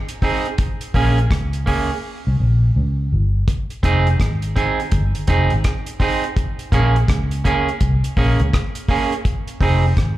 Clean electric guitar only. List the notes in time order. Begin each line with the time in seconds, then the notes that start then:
0.22 C4 D#4 G#4
0.94 A#3 C#4 G#4
1.66 A#3 C#4 G#4
3.83 C4 D#4 G#4
4.56 C4 D#4 G#4
5.28 C4 D#4 G#4
6.00 C4 D#4 G#4
6.72 A#3 C#4 G#4
7.44 A#3 C#4 G#4
8.17 A#3 C#4 G#4
8.89 A#3 C#4 G#4
9.61 C4 D#4 G#4